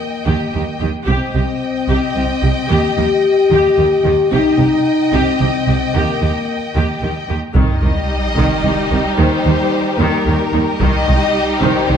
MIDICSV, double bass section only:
0, 0, Header, 1, 2, 480
1, 0, Start_track
1, 0, Key_signature, -3, "minor"
1, 0, Tempo, 540541
1, 950, Time_signature, 6, 3, 24, 8
1, 10629, End_track
2, 0, Start_track
2, 0, Title_t, "Double bass section"
2, 0, Program_c, 0, 48
2, 234, Note_on_c, 0, 39, 41
2, 305, Note_off_c, 0, 39, 0
2, 473, Note_on_c, 0, 39, 30
2, 544, Note_off_c, 0, 39, 0
2, 713, Note_on_c, 0, 39, 29
2, 784, Note_off_c, 0, 39, 0
2, 952, Note_on_c, 0, 36, 43
2, 1023, Note_off_c, 0, 36, 0
2, 1194, Note_on_c, 0, 36, 30
2, 1265, Note_off_c, 0, 36, 0
2, 1672, Note_on_c, 0, 36, 46
2, 1743, Note_off_c, 0, 36, 0
2, 1915, Note_on_c, 0, 36, 34
2, 1986, Note_off_c, 0, 36, 0
2, 2153, Note_on_c, 0, 36, 31
2, 2224, Note_off_c, 0, 36, 0
2, 2399, Note_on_c, 0, 39, 46
2, 2470, Note_off_c, 0, 39, 0
2, 2642, Note_on_c, 0, 39, 34
2, 2713, Note_off_c, 0, 39, 0
2, 3127, Note_on_c, 0, 39, 51
2, 3198, Note_off_c, 0, 39, 0
2, 3354, Note_on_c, 0, 39, 39
2, 3425, Note_off_c, 0, 39, 0
2, 3600, Note_on_c, 0, 39, 40
2, 3671, Note_off_c, 0, 39, 0
2, 3839, Note_on_c, 0, 36, 52
2, 3910, Note_off_c, 0, 36, 0
2, 4072, Note_on_c, 0, 36, 37
2, 4143, Note_off_c, 0, 36, 0
2, 4554, Note_on_c, 0, 36, 55
2, 4625, Note_off_c, 0, 36, 0
2, 4800, Note_on_c, 0, 36, 36
2, 4871, Note_off_c, 0, 36, 0
2, 5041, Note_on_c, 0, 36, 34
2, 5112, Note_off_c, 0, 36, 0
2, 5278, Note_on_c, 0, 39, 45
2, 5349, Note_off_c, 0, 39, 0
2, 5515, Note_on_c, 0, 39, 31
2, 5586, Note_off_c, 0, 39, 0
2, 5999, Note_on_c, 0, 39, 46
2, 6070, Note_off_c, 0, 39, 0
2, 6228, Note_on_c, 0, 39, 29
2, 6299, Note_off_c, 0, 39, 0
2, 6472, Note_on_c, 0, 39, 28
2, 6543, Note_off_c, 0, 39, 0
2, 6705, Note_on_c, 0, 36, 46
2, 6776, Note_off_c, 0, 36, 0
2, 6948, Note_on_c, 0, 36, 31
2, 7019, Note_off_c, 0, 36, 0
2, 7433, Note_on_c, 0, 36, 48
2, 7504, Note_off_c, 0, 36, 0
2, 7671, Note_on_c, 0, 36, 35
2, 7742, Note_off_c, 0, 36, 0
2, 7917, Note_on_c, 0, 36, 36
2, 7988, Note_off_c, 0, 36, 0
2, 8157, Note_on_c, 0, 39, 48
2, 8228, Note_off_c, 0, 39, 0
2, 8393, Note_on_c, 0, 39, 38
2, 8464, Note_off_c, 0, 39, 0
2, 8878, Note_on_c, 0, 39, 60
2, 8949, Note_off_c, 0, 39, 0
2, 9114, Note_on_c, 0, 39, 43
2, 9185, Note_off_c, 0, 39, 0
2, 9353, Note_on_c, 0, 39, 43
2, 9424, Note_off_c, 0, 39, 0
2, 9597, Note_on_c, 0, 36, 58
2, 9668, Note_off_c, 0, 36, 0
2, 9839, Note_on_c, 0, 36, 41
2, 9910, Note_off_c, 0, 36, 0
2, 10316, Note_on_c, 0, 36, 59
2, 10387, Note_off_c, 0, 36, 0
2, 10559, Note_on_c, 0, 36, 38
2, 10629, Note_off_c, 0, 36, 0
2, 10629, End_track
0, 0, End_of_file